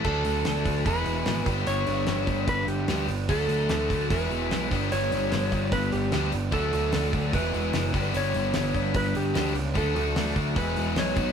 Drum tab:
CC |x---------------|----------------|----------------|----------------|
HH |--o-o-o-o-o-o-o-|o-o-o-o-o-o-o-o-|o-o-o-o-o-o-o-o-|o-o-o-o-o-o-o-o-|
SD |----oo------o---|----o-------o---|----o-------o---|----o-------o---|
BD |o-----o-o-----o-|------o-o-------|o-----o-o-----o-|------o-o-------|

CC |----------------|----------------|----------------|
HH |o-o-o-o-o-o-o-o-|o-o-o-o-o-o-o-o-|o-o-o-o-o-o-o-o-|
SD |----oo---o--o---|----o----o--o---|----o-------o---|
BD |o-----o-o-----o-|------o-o-------|o-----o-o-----o-|